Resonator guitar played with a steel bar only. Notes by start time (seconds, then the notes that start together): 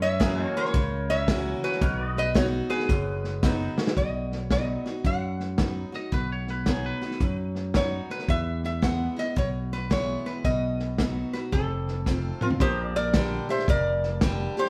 0.02 C#5 E5
0.38 D#5
0.57 A#4 C#5
1.10 C#5 E5
1.64 F#4 B4
2.18 B4 D#5
2.36 F#4 C#5
2.70 G#4 B4
3.97 D#5
4.52 D#5
5.06 F#5
7.76 C#5
8.11 B4
8.30 E5
8.66 E5
8.84 F#5
9.19 D#5
9.38 C#5
9.73 B4
9.92 C#5
10.26 B4
10.45 D#5
11.33 B4
11.52 A4
12.42 F4 A#4
12.61 G4 C5
12.96 A#4 D5
13.50 C5 E5
13.70 A#4 D5
14.59 G4 C5